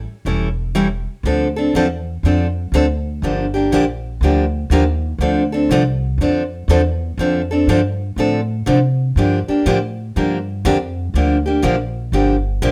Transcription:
0.25 1.04 E1 medium
0.25 0.47 E3 medium
0.25 0.47 G3 medium
0.25 0.47 C#4 medium
0.25 0.48 E4 medium
0.25 0.48 A4 medium
0.75 0.86 E3 medium
0.75 0.87 G3 medium
0.75 0.87 C#4 medium
0.75 0.87 E4 medium
0.75 0.87 A4 medium
1.23 1.72 D2 medium
1.23 1.47 D3 medium
1.23 1.46 F3 medium
1.23 1.47 C4 medium
1.23 1.47 D4 medium
1.23 1.47 A4 medium
1.56 1.75 C4 soft
1.56 1.74 D4 soft
1.56 1.74 A4 medium
1.74 2.22 E2 medium
1.74 1.86 D3 medium
1.74 1.86 F3 medium
1.74 1.87 C4 medium
1.74 1.86 D4 medium
1.74 1.87 A4 medium
2.23 2.71 F2 medium
2.23 2.46 D3 medium
2.23 2.46 F3 medium
2.23 2.46 C4 medium
2.23 2.46 D4 medium
2.23 2.47 A4 medium
2.72 3.20 D2 medium
2.72 2.85 D3 medium
2.72 2.85 F3 medium
2.72 2.85 C4 medium
2.72 2.85 D4 medium
2.72 2.85 A4 medium
3.22 3.70 G1 medium
3.22 3.44 D3 medium
3.22 3.45 F3 medium
3.22 3.45 A#3 medium
3.22 3.45 D4 medium
3.22 3.45 G4 medium
3.54 3.71 A#3 soft
3.54 3.72 D4 soft
3.54 3.71 G4 medium
3.71 4.20 A#1 medium
3.71 3.83 D3 medium
3.71 3.84 F3 medium
3.71 3.84 A#3 medium
3.71 3.84 D4 medium
3.71 3.84 G4 loud
4.21 4.69 D2 medium
4.21 4.44 D3 medium
4.21 4.44 F3 medium
4.21 4.44 A#3 medium
4.21 4.44 D4 medium
4.21 4.44 G4 medium
4.70 5.18 D#2 medium
4.70 4.82 D3 medium
4.70 4.83 F3 medium
4.70 4.83 A#3 loud
4.70 4.83 D4 medium
4.70 4.83 G4 medium
5.18 5.67 D2 medium
5.18 5.42 D3 medium
5.18 5.42 F3 medium
5.18 5.42 C4 medium
5.18 5.43 D4 medium
5.18 5.43 A4 medium
5.52 5.70 C4 soft
5.52 5.70 D4 medium
5.52 5.69 A4 medium
5.69 6.17 C2 medium
5.69 5.82 D3 loud
5.69 5.82 F3 medium
5.69 5.82 C4 medium
5.69 5.82 D4 loud
5.69 5.82 A4 loud
6.18 6.67 F2 medium
6.18 6.42 D3 medium
6.18 6.42 F3 medium
6.18 6.42 D4 medium
6.22 6.42 C4 medium
6.22 6.42 A4 medium
6.68 7.16 E2 medium
6.68 6.80 D3 medium
6.68 6.81 F3 medium
6.68 6.81 C4 medium
6.68 6.81 D4 medium
6.68 6.81 A4 medium
7.18 7.66 F2 medium
7.18 7.40 D3 medium
7.18 7.40 F3 medium
7.18 7.41 C4 medium
7.18 7.41 D4 medium
7.18 7.41 A4 medium
7.51 7.68 C4 soft
7.51 7.68 D4 medium
7.51 7.68 A4 medium
7.67 8.15 G2 medium
7.67 7.80 D3 medium
7.67 7.80 F3 medium
7.67 7.80 C4 medium
7.67 7.80 D4 loud
7.67 7.80 A4 medium
8.16 8.65 A2 medium
8.16 8.39 D3 medium
8.16 8.39 F3 medium
8.16 8.39 C4 medium
8.16 8.40 D4 medium
8.16 8.40 A4 medium
8.66 9.15 C3 medium
8.66 8.78 D3 medium
8.66 8.78 F3 medium
8.66 8.78 C4 medium
8.66 8.78 D4 medium
8.66 8.78 A4 medium
9.16 9.45 G2 medium
9.16 9.38 D3 medium
9.16 9.38 F3 medium
9.16 9.38 A#3 medium
9.16 9.39 D4 medium
9.16 9.39 G4 medium
9.48 9.65 A#3 soft
9.48 9.66 D4 soft
9.48 9.65 G4 medium
9.48 muted upright bass stroke soft
9.66 10.14 A2 medium
9.66 9.77 D3 medium
9.66 9.77 F3 medium
9.66 9.77 A#3 medium
9.66 9.78 D4 medium
9.66 9.78 G4 medium
10.16 10.64 G2 medium
10.16 10.37 D3 medium
10.16 10.37 F3 medium
10.16 10.37 A#3 medium
10.16 10.37 D4 medium
10.16 10.38 G4 medium
10.65 11.13 F2 medium
10.65 10.76 D3 loud
10.65 10.77 F3 medium
10.65 10.76 A#3 loud
10.65 10.77 D4 loud
10.65 10.77 G4 loud
11.14 11.62 D2 medium
11.14 11.36 D3 medium
11.14 11.36 F3 medium
11.14 11.37 A#3 medium
11.14 11.36 D4 medium
11.14 11.37 G4 medium
11.46 11.62 A#3 soft
11.46 11.63 D4 soft
11.46 11.63 G4 medium
11.63 12.11 A#1 medium
11.63 11.74 D3 medium
11.63 11.75 F3 medium
11.63 11.75 A#3 medium
11.63 11.75 D4 medium
11.63 11.75 G4 loud
12.12 12.61 G1 medium
12.12 12.35 D3 medium
12.12 12.35 F3 medium
12.12 12.35 A#3 medium
12.12 12.35 D4 medium
12.12 12.35 G4 medium
12.62 12.72 A#1 medium
12.62 12.72 D3 medium
12.62 12.72 F3 medium
12.62 12.72 A#3 medium
12.62 12.72 D4 loud
12.62 12.72 G4 loud

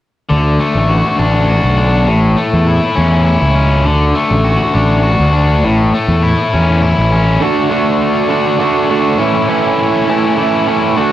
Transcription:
0.29 0.57 D2 medium
0.29 1.78 D3 medium
0.59 2.36 A3 medium
0.75 1.01 A1 medium
0.89 1.48 F#4 medium
1.19 1.59 A1 medium
1.19 1.76 D4 medium
1.49 2.08 F#4 medium
1.64 2.08 B1 medium
1.77 2.08 D4 medium
2.06 2.34 A1 medium
2.06 3.55 A2 medium
2.36 4.15 A3 medium
2.53 2.79 E2 medium
2.67 3.24 E4 medium
2.95 3.37 E2 medium
2.95 3.54 C#4 medium
3.26 3.85 E4 medium
3.42 3.86 C#2 medium
3.55 3.85 C#4 medium
3.85 4.12 D2 medium
3.85 5.34 D3 medium
4.15 5.93 A3 medium
4.31 4.57 A1 medium
4.44 5.02 F#4 medium
4.74 5.14 A1 medium
4.74 5.32 D4 medium
5.03 5.63 F#4 medium
5.20 5.64 D2 medium
5.33 5.63 D4 medium
5.64 5.90 A1 medium
5.64 7.12 A2 medium
5.94 7.40 A3 medium
6.08 6.35 E2 medium
6.23 6.80 E4 medium
6.53 6.93 E2 medium
6.53 7.11 C#4 medium
6.82 7.41 E4 medium
6.99 7.37 A1 medium
7.12 7.42 C#4 medium
7.41 7.69 D3 medium
7.41 7.71 A3 medium
7.41 7.70 D4 medium
7.41 7.71 F#4 medium
7.70 8.28 D3 medium
7.70 8.30 A3 medium
7.70 8.29 D4 medium
7.70 8.29 F#4 medium
8.29 8.58 D3 medium
8.29 8.59 A3 medium
8.29 8.59 D4 medium
8.29 8.59 F#4 medium
8.59 8.88 D3 medium
8.59 8.89 A3 medium
8.59 8.90 D4 medium
8.59 8.90 F#4 medium
8.89 9.18 D3 medium
8.89 9.18 A3 medium
8.89 9.18 D4 medium
8.89 9.18 F#4 medium
9.18 9.47 A2 medium
9.18 9.47 E3 medium
9.18 9.48 A3 medium
9.18 9.48 C#4 medium
9.18 9.49 E4 medium
9.48 10.08 A2 medium
9.48 10.08 E3 medium
9.48 10.10 A3 medium
9.48 10.09 C#4 medium
9.48 10.09 E4 medium
10.09 10.35 A2 medium
10.09 10.36 E3 medium
10.09 10.36 A3 loud
10.09 10.36 C#4 medium
10.09 10.37 E4 loud
10.36 10.66 A2 medium
10.36 10.66 E3 medium
10.36 10.67 A3 medium
10.36 10.68 C#4 medium
10.36 10.67 E4 medium
10.67 10.96 A2 medium
10.67 10.96 E3 medium
10.67 10.96 A3 medium
10.67 10.97 C#4 medium
10.67 10.96 E4 medium
10.96 11.12 D3 medium
10.96 11.12 A3 medium
10.96 11.12 D4 medium
10.96 11.12 F#4 medium

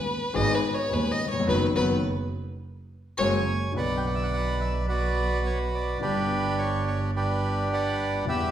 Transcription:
0.00 0.37 B4 medium
0.34 0.58 G#1 medium
0.34 0.59 G#1 medium
0.34 0.58 G#2 medium
0.34 0.58 D#3 medium
0.34 0.58 G#3 medium
0.34 0.58 B3 medium
0.34 0.58 G#4 medium
0.34 0.56 D#5 loud
0.55 0.76 B4 medium
0.75 0.95 C#5 medium
0.90 1.15 D#1 medium
0.90 1.15 D#2 medium
0.90 1.14 D#3 soft
0.90 1.15 G#3 soft
0.90 1.15 B3 soft
0.90 1.15 G#4 medium
0.90 1.13 B4 medium
1.12 1.30 D#5 medium
1.26 1.33 D#2 soft
1.31 1.41 E2 medium
1.31 1.48 C#5 medium
1.40 1.47 F2 medium
1.47 1.69 F#1 medium
1.47 1.66 D#3 loud
1.47 1.66 F#3 loud
1.47 1.66 B3 loud
1.47 1.66 B4 medium
1.76 1.98 F#1 medium
1.76 1.94 D#3 medium
1.76 1.94 F#3 medium
1.76 1.94 B3 loud
1.76 1.94 B4 medium
3.18 3.40 F#1 medium
3.18 3.37 F#3 medium
3.18 3.37 G#3 medium
3.18 3.37 A#3 medium
3.18 3.36 C#5 medium
3.18 3.73 C#5 medium
3.18 3.73 G#5 medium
3.72 5.90 B1 medium
3.72 5.91 B2 medium
3.72 5.89 D3 medium
3.72 5.90 F#3 soft
3.72 5.91 B3 soft
3.76 5.91 B1 medium
3.76 5.91 F#4 medium
3.76 4.86 B4 medium
3.76 4.86 D5 medium
3.76 3.98 F#5 medium
3.97 4.06 G5 medium
4.06 4.15 F#5 medium
4.15 4.24 E5 medium
4.23 4.32 F#5 medium
4.33 4.59 F#5 medium
4.61 4.74 E5 medium
4.88 5.98 F#4 medium
4.88 5.98 B4 medium
4.88 5.42 D5 medium
5.46 5.58 C#5 medium
5.75 6.01 D5 medium
6.00 8.16 G1 medium
6.00 8.17 G1 medium
6.00 8.16 G2 medium
6.00 8.15 D3 medium
6.00 8.16 G3 soft
6.00 8.17 B3 soft
6.00 7.11 D4 medium
6.00 7.11 G4 medium
6.00 6.60 B4 medium
6.04 8.18 G4 medium
6.58 6.85 C#5 medium
6.87 7.00 C#5 medium
7.16 8.24 D4 medium
7.16 8.25 G4 medium
7.16 7.68 B4 medium
7.73 8.25 B4 medium
7.73 8.25 D5 medium
7.73 8.25 F#5 medium
8.25 8.51 E2 medium
8.25 8.26 E3 medium
8.25 8.51 E3 medium
8.25 8.51 G3 soft
8.25 8.51 B3 soft
8.25 8.51 G4 medium
8.25 8.51 B4 medium
8.29 8.51 E5 medium
8.29 8.51 F#5 medium

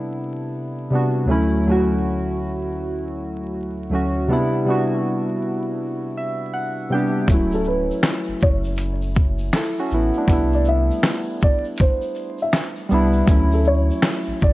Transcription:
0.00 0.90 C3 medium
0.00 0.92 G3 medium
0.00 0.93 B3 medium
0.00 0.95 D4 medium
0.00 1.30 E4 medium
0.00 1.30 A4 medium
0.90 1.22 C3 medium
0.90 1.22 G3 medium
0.90 1.23 B3 medium
0.95 1.24 D4 medium
0.95 1.24 F#4 medium
1.26 1.58 D2 medium
1.26 1.59 F#3 medium
1.26 1.60 A3 medium
1.26 1.60 C#4 medium
1.31 1.61 E4 medium
1.66 2.82 D2 medium
1.66 2.82 F#3 medium
1.66 2.83 A3 medium
1.70 2.84 C#4 medium
1.70 2.85 F#4 medium
3.90 4.21 D2 medium
3.90 4.22 F#3 medium
3.90 4.22 A3 medium
3.90 4.23 C#4 medium
3.95 4.24 F#4 medium
4.28 4.59 C3 medium
4.28 4.60 G3 medium
4.28 4.60 B3 medium
4.28 4.61 D4 medium
4.32 4.61 E4 medium
4.65 5.81 C3 medium
4.65 5.82 G3 medium
4.65 5.83 B3 medium
4.65 5.83 D4 medium
4.70 5.84 F#4 medium
6.17 6.51 E5 medium
6.54 6.88 F#5 medium
6.90 7.21 C3 medium
6.90 7.22 G3 medium
6.90 7.23 B3 medium
6.90 7.23 D4 medium
6.90 7.26 G5 medium
6.95 7.24 G4 medium
7.28 7.91 D1 loud
7.28 8.44 F#3 medium
7.28 8.45 A3 medium
7.28 kick medium
7.28 closed hi-hat medium
7.28 shaker medium
7.32 8.46 C#4 medium
7.32 8.47 E4 medium
7.52 7.67 A4 medium
7.52 shaker soft
7.64 8.00 B4 medium
7.64 shaker soft
7.91 shaker medium
8.03 finger snap medium
8.03 snare loud
8.03 closed hi-hat medium
8.03 shaker medium
8.24 shaker soft
8.28 8.33 F#1 medium
8.40 9.50 F#1 medium
8.40 8.63 C#5 medium
8.40 kick medium
8.40 shaker soft
8.64 shaker medium
8.76 closed hi-hat medium
8.76 shaker medium
9.02 shaker soft
9.14 kick medium
9.14 shaker soft
9.38 shaker medium
9.52 9.77 E4 medium
9.52 9.77 A4 medium
9.52 finger snap medium
9.52 snare loud
9.52 closed hi-hat medium
9.52 shaker medium
9.77 9.92 C#4 medium
9.77 9.91 F#4 medium
9.77 shaker soft
9.91 10.11 A1 loud
9.91 10.15 B3 medium
9.91 10.15 E4 medium
9.91 shaker soft
10.14 10.29 D4 medium
10.14 shaker soft
10.18 10.52 A3 medium
10.27 10.91 C2 loud
10.27 11.44 G3 medium
10.27 11.45 B3 medium
10.27 11.45 D4 medium
10.27 kick medium
10.27 closed hi-hat medium
10.27 shaker medium
10.32 11.46 E4 medium
10.53 10.66 D5 medium
10.53 shaker soft
10.65 11.01 E5 medium
10.65 shaker soft
10.91 shaker soft
11.03 finger snap medium
11.03 snare loud
11.03 closed hi-hat medium
11.03 shaker medium
11.24 shaker soft
11.41 11.63 D5 medium
11.41 kick medium
11.41 shaker soft
11.65 shaker medium
11.77 kick medium
11.77 closed hi-hat medium
11.77 shaker medium
11.81 12.37 C5 medium
12.02 shaker medium
12.15 shaker soft
12.39 12.53 E5 medium
12.39 shaker soft
12.53 finger snap medium
12.53 snare loud
12.53 closed hi-hat medium
12.53 shaker medium
12.76 shaker soft
12.89 13.22 C2 medium
12.89 13.21 G3 medium
12.89 13.22 B3 medium
12.89 13.23 D4 medium
12.89 shaker soft
12.94 13.23 E4 medium
13.13 shaker soft
13.26 13.91 D2 loud
13.26 14.43 F#3 medium
13.26 14.44 A3 medium
13.26 14.45 C#4 medium
13.26 kick loud
13.26 closed hi-hat medium
13.26 shaker medium
13.32 14.46 E4 medium
13.52 13.65 A4 medium
13.52 shaker soft
13.64 14.00 C#5 medium
13.64 shaker soft
13.91 shaker medium
14.02 finger snap medium
14.02 snare loud
14.02 closed hi-hat medium
14.02 shaker medium
14.24 14.33 A1 soft
14.24 shaker soft
14.40 14.53 A1 medium
14.40 14.53 D5 medium
14.40 kick medium
14.40 shaker soft

